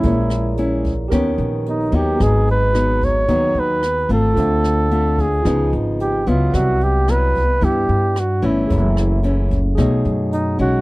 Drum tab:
HH |xxxxxxxx|xxxxxxxx|xxxxxxxx|xxxxxxxx|
SD |-r--r---|r-r---r-|-r--r---|r-r---r-|
BD |o--oo---|o--oo---|o--oo---|o--oo---|

HH |xxxxxxxx|
SD |-r--r---|
BD |o--oo---|